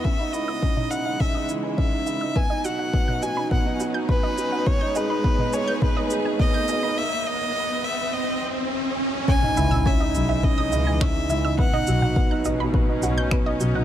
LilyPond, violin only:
\new Staff \with { instrumentName = "Violin" } { \time 4/4 \key cis \minor \tempo 4 = 104 e''8 dis''4 fis''8 e''8 r8 e''4 | gis''8 fis''4 gis''8 fis''8 r8 b'4 | cis''8 b'4 cis''8 b'8 r8 dis''4 | e''8 dis''4 e''8 dis''8 r4. |
gis''4 e''4 dis''4 e''4 | fis''4. r2 r8 | }